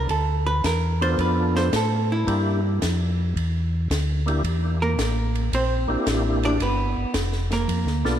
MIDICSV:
0, 0, Header, 1, 5, 480
1, 0, Start_track
1, 0, Tempo, 542495
1, 83, Time_signature, 4, 2, 24, 8
1, 7249, End_track
2, 0, Start_track
2, 0, Title_t, "Hollow-body jazz guitar"
2, 0, Program_c, 0, 26
2, 94, Note_on_c, 0, 69, 65
2, 407, Note_off_c, 0, 69, 0
2, 411, Note_on_c, 0, 71, 94
2, 559, Note_off_c, 0, 71, 0
2, 582, Note_on_c, 0, 70, 68
2, 893, Note_off_c, 0, 70, 0
2, 904, Note_on_c, 0, 72, 99
2, 1046, Note_off_c, 0, 72, 0
2, 1068, Note_on_c, 0, 71, 70
2, 1376, Note_off_c, 0, 71, 0
2, 1385, Note_on_c, 0, 72, 90
2, 1526, Note_off_c, 0, 72, 0
2, 1557, Note_on_c, 0, 69, 72
2, 1862, Note_off_c, 0, 69, 0
2, 1876, Note_on_c, 0, 64, 72
2, 2313, Note_off_c, 0, 64, 0
2, 4266, Note_on_c, 0, 70, 78
2, 4271, Note_on_c, 0, 58, 64
2, 4857, Note_off_c, 0, 70, 0
2, 4859, Note_off_c, 0, 58, 0
2, 4906, Note_on_c, 0, 60, 61
2, 4909, Note_on_c, 0, 72, 65
2, 5670, Note_off_c, 0, 72, 0
2, 5671, Note_off_c, 0, 60, 0
2, 5709, Note_on_c, 0, 74, 100
2, 5713, Note_on_c, 0, 62, 76
2, 5849, Note_off_c, 0, 74, 0
2, 5851, Note_off_c, 0, 62, 0
2, 5858, Note_on_c, 0, 71, 80
2, 5867, Note_on_c, 0, 59, 61
2, 6299, Note_off_c, 0, 71, 0
2, 6304, Note_off_c, 0, 59, 0
2, 6659, Note_on_c, 0, 58, 65
2, 6666, Note_on_c, 0, 70, 75
2, 7249, Note_off_c, 0, 58, 0
2, 7249, Note_off_c, 0, 70, 0
2, 7249, End_track
3, 0, Start_track
3, 0, Title_t, "Tonewheel organ"
3, 0, Program_c, 1, 16
3, 895, Note_on_c, 1, 59, 62
3, 895, Note_on_c, 1, 62, 54
3, 903, Note_on_c, 1, 65, 59
3, 909, Note_on_c, 1, 69, 74
3, 1496, Note_off_c, 1, 59, 0
3, 1496, Note_off_c, 1, 62, 0
3, 1500, Note_off_c, 1, 65, 0
3, 1503, Note_off_c, 1, 69, 0
3, 2005, Note_on_c, 1, 58, 60
3, 2013, Note_on_c, 1, 62, 56
3, 2014, Note_on_c, 1, 64, 58
3, 2016, Note_on_c, 1, 67, 67
3, 2302, Note_off_c, 1, 58, 0
3, 2306, Note_off_c, 1, 62, 0
3, 2307, Note_off_c, 1, 64, 0
3, 2308, Note_off_c, 1, 67, 0
3, 3770, Note_on_c, 1, 58, 61
3, 3778, Note_on_c, 1, 62, 56
3, 3783, Note_on_c, 1, 64, 52
3, 3790, Note_on_c, 1, 67, 69
3, 3909, Note_off_c, 1, 58, 0
3, 3913, Note_off_c, 1, 62, 0
3, 3916, Note_off_c, 1, 64, 0
3, 3919, Note_off_c, 1, 67, 0
3, 5200, Note_on_c, 1, 58, 70
3, 5206, Note_on_c, 1, 62, 61
3, 5215, Note_on_c, 1, 64, 59
3, 5220, Note_on_c, 1, 67, 75
3, 5809, Note_off_c, 1, 58, 0
3, 5812, Note_off_c, 1, 62, 0
3, 5817, Note_off_c, 1, 64, 0
3, 5819, Note_off_c, 1, 67, 0
3, 7118, Note_on_c, 1, 59, 64
3, 7124, Note_on_c, 1, 62, 53
3, 7126, Note_on_c, 1, 69, 61
3, 7127, Note_on_c, 1, 65, 54
3, 7249, Note_off_c, 1, 59, 0
3, 7249, Note_off_c, 1, 62, 0
3, 7249, Note_off_c, 1, 65, 0
3, 7249, Note_off_c, 1, 69, 0
3, 7249, End_track
4, 0, Start_track
4, 0, Title_t, "Tonewheel organ"
4, 0, Program_c, 2, 16
4, 79, Note_on_c, 2, 38, 68
4, 547, Note_off_c, 2, 38, 0
4, 565, Note_on_c, 2, 40, 81
4, 1031, Note_off_c, 2, 40, 0
4, 1041, Note_on_c, 2, 41, 78
4, 1509, Note_off_c, 2, 41, 0
4, 1526, Note_on_c, 2, 45, 90
4, 1992, Note_off_c, 2, 45, 0
4, 2011, Note_on_c, 2, 43, 75
4, 2475, Note_off_c, 2, 43, 0
4, 2492, Note_on_c, 2, 41, 87
4, 2955, Note_off_c, 2, 41, 0
4, 2970, Note_on_c, 2, 40, 80
4, 3435, Note_off_c, 2, 40, 0
4, 3452, Note_on_c, 2, 38, 84
4, 3916, Note_off_c, 2, 38, 0
4, 3925, Note_on_c, 2, 40, 75
4, 4392, Note_off_c, 2, 40, 0
4, 4401, Note_on_c, 2, 33, 84
4, 4870, Note_off_c, 2, 33, 0
4, 4886, Note_on_c, 2, 34, 77
4, 5193, Note_off_c, 2, 34, 0
4, 5209, Note_on_c, 2, 34, 42
4, 5286, Note_off_c, 2, 34, 0
4, 5364, Note_on_c, 2, 33, 86
4, 5831, Note_off_c, 2, 33, 0
4, 5838, Note_on_c, 2, 31, 72
4, 6148, Note_off_c, 2, 31, 0
4, 6167, Note_on_c, 2, 31, 40
4, 6244, Note_off_c, 2, 31, 0
4, 6316, Note_on_c, 2, 29, 88
4, 6787, Note_off_c, 2, 29, 0
4, 6796, Note_on_c, 2, 41, 76
4, 6946, Note_on_c, 2, 38, 51
4, 6956, Note_off_c, 2, 41, 0
4, 7116, Note_off_c, 2, 38, 0
4, 7120, Note_on_c, 2, 35, 66
4, 7249, Note_off_c, 2, 35, 0
4, 7249, End_track
5, 0, Start_track
5, 0, Title_t, "Drums"
5, 81, Note_on_c, 9, 51, 53
5, 82, Note_on_c, 9, 36, 23
5, 169, Note_off_c, 9, 51, 0
5, 171, Note_off_c, 9, 36, 0
5, 567, Note_on_c, 9, 36, 21
5, 568, Note_on_c, 9, 38, 61
5, 568, Note_on_c, 9, 44, 58
5, 568, Note_on_c, 9, 51, 66
5, 655, Note_off_c, 9, 36, 0
5, 656, Note_off_c, 9, 44, 0
5, 656, Note_off_c, 9, 51, 0
5, 657, Note_off_c, 9, 38, 0
5, 902, Note_on_c, 9, 51, 41
5, 991, Note_off_c, 9, 51, 0
5, 1048, Note_on_c, 9, 36, 22
5, 1049, Note_on_c, 9, 51, 52
5, 1137, Note_off_c, 9, 36, 0
5, 1138, Note_off_c, 9, 51, 0
5, 1378, Note_on_c, 9, 38, 44
5, 1466, Note_off_c, 9, 38, 0
5, 1529, Note_on_c, 9, 44, 51
5, 1529, Note_on_c, 9, 51, 66
5, 1530, Note_on_c, 9, 36, 17
5, 1530, Note_on_c, 9, 38, 65
5, 1618, Note_off_c, 9, 36, 0
5, 1618, Note_off_c, 9, 38, 0
5, 1618, Note_off_c, 9, 44, 0
5, 1618, Note_off_c, 9, 51, 0
5, 2014, Note_on_c, 9, 36, 22
5, 2015, Note_on_c, 9, 51, 58
5, 2102, Note_off_c, 9, 36, 0
5, 2104, Note_off_c, 9, 51, 0
5, 2494, Note_on_c, 9, 36, 18
5, 2495, Note_on_c, 9, 38, 62
5, 2495, Note_on_c, 9, 44, 59
5, 2495, Note_on_c, 9, 51, 65
5, 2583, Note_off_c, 9, 36, 0
5, 2583, Note_off_c, 9, 44, 0
5, 2583, Note_off_c, 9, 51, 0
5, 2584, Note_off_c, 9, 38, 0
5, 2976, Note_on_c, 9, 36, 23
5, 2981, Note_on_c, 9, 51, 55
5, 3064, Note_off_c, 9, 36, 0
5, 3070, Note_off_c, 9, 51, 0
5, 3454, Note_on_c, 9, 36, 26
5, 3459, Note_on_c, 9, 44, 55
5, 3459, Note_on_c, 9, 51, 63
5, 3460, Note_on_c, 9, 38, 68
5, 3543, Note_off_c, 9, 36, 0
5, 3547, Note_off_c, 9, 44, 0
5, 3547, Note_off_c, 9, 51, 0
5, 3548, Note_off_c, 9, 38, 0
5, 3786, Note_on_c, 9, 51, 43
5, 3874, Note_off_c, 9, 51, 0
5, 3932, Note_on_c, 9, 36, 19
5, 3932, Note_on_c, 9, 51, 57
5, 4021, Note_off_c, 9, 36, 0
5, 4021, Note_off_c, 9, 51, 0
5, 4410, Note_on_c, 9, 36, 18
5, 4412, Note_on_c, 9, 44, 62
5, 4412, Note_on_c, 9, 51, 60
5, 4413, Note_on_c, 9, 38, 68
5, 4498, Note_off_c, 9, 36, 0
5, 4500, Note_off_c, 9, 44, 0
5, 4500, Note_off_c, 9, 51, 0
5, 4501, Note_off_c, 9, 38, 0
5, 4736, Note_on_c, 9, 51, 40
5, 4825, Note_off_c, 9, 51, 0
5, 4889, Note_on_c, 9, 36, 21
5, 4894, Note_on_c, 9, 51, 63
5, 4977, Note_off_c, 9, 36, 0
5, 4983, Note_off_c, 9, 51, 0
5, 5366, Note_on_c, 9, 36, 18
5, 5367, Note_on_c, 9, 44, 51
5, 5367, Note_on_c, 9, 51, 65
5, 5368, Note_on_c, 9, 38, 69
5, 5455, Note_off_c, 9, 36, 0
5, 5456, Note_off_c, 9, 44, 0
5, 5456, Note_off_c, 9, 51, 0
5, 5457, Note_off_c, 9, 38, 0
5, 5692, Note_on_c, 9, 51, 46
5, 5781, Note_off_c, 9, 51, 0
5, 5841, Note_on_c, 9, 36, 18
5, 5841, Note_on_c, 9, 51, 59
5, 5929, Note_off_c, 9, 51, 0
5, 5930, Note_off_c, 9, 36, 0
5, 6318, Note_on_c, 9, 44, 50
5, 6318, Note_on_c, 9, 51, 67
5, 6319, Note_on_c, 9, 38, 68
5, 6321, Note_on_c, 9, 36, 18
5, 6407, Note_off_c, 9, 44, 0
5, 6407, Note_off_c, 9, 51, 0
5, 6408, Note_off_c, 9, 38, 0
5, 6409, Note_off_c, 9, 36, 0
5, 6480, Note_on_c, 9, 38, 28
5, 6569, Note_off_c, 9, 38, 0
5, 6642, Note_on_c, 9, 38, 37
5, 6650, Note_on_c, 9, 51, 42
5, 6730, Note_off_c, 9, 38, 0
5, 6738, Note_off_c, 9, 51, 0
5, 6803, Note_on_c, 9, 36, 18
5, 6803, Note_on_c, 9, 51, 59
5, 6891, Note_off_c, 9, 36, 0
5, 6892, Note_off_c, 9, 51, 0
5, 6964, Note_on_c, 9, 38, 25
5, 7052, Note_off_c, 9, 38, 0
5, 7126, Note_on_c, 9, 38, 42
5, 7214, Note_off_c, 9, 38, 0
5, 7249, End_track
0, 0, End_of_file